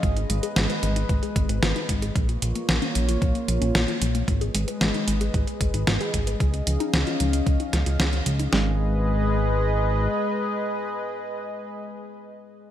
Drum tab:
HH |xxxxxxxxxxxxxxxx|xxxxxxxxxxxxxxxx|xxxxxxxxxxxxxxxx|xxxxxxxxxxxxxxxx|
SD |----o-------o---|----o-------o---|----o-------o---|----o-----o-o---|
BD |o-------o-o---o-|o-------o-------|o-------o-o---o-|o-------o-------|

HH |----------------|----------------|
SD |o---------------|----------------|
BD |----------------|----------------|